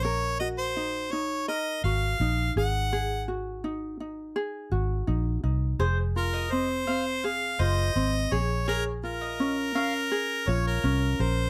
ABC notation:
X:1
M:4/4
L:1/16
Q:1/4=83
K:Bbm
V:1 name="Mandolin"
z16 | z16 | c z2 e2 z f z3 c3 z3 | d z2 e2 z f z3 d3 z3 |]
V:2 name="Harmonica"
d2 e c3 d2 e2 f4 g2- | g2 z12 z2 | z2 B2 c4 f2 e4 d2 | B2 B8 d B3 c2 |]
V:3 name="Ukulele"
B2 G2 E2 E2 B2 G2 E2 A2 | A2 G2 E2 E2 A2 G2 E2 E2 | A2 F2 C2 C2 A2 F2 C2 A2 | A2 F2 D2 D2 A2 F2 D2 B2 |]
V:4 name="Fingered electric bass" clef=bass
B,,,8- B,,,2 A,,,2 B,,,2 A,,,2- | A,,,8- A,,,2 A,,,2 B,,,2 C,,2 | F,,,8- F,,,2 G,,,2 A,,,2 B,,,2- | B,,,8- B,,,2 B,,,2 C,,2 B,,,2 |]